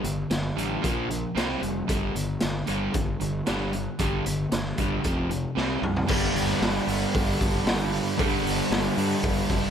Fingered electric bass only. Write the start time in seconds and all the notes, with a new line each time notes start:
0.04 G1
0.31 G1
0.57 A1
0.84 A#1
1.35 C2
1.62 F1
1.89 G1
2.15 G1
2.43 G1
2.68 G1
2.94 G1
3.21 G1
3.48 G1
3.99 G1
4.26 G1
4.52 G1
4.78 G1
5.05 F1
5.57 C2
5.82 C2
6.09 G1
6.35 G1
6.62 G1
6.87 G1
7.15 G1
7.42 G1
7.65 G1
8.20 G2
8.43 G1
8.70 G1
8.97 G2
9.23 G1
9.50 G1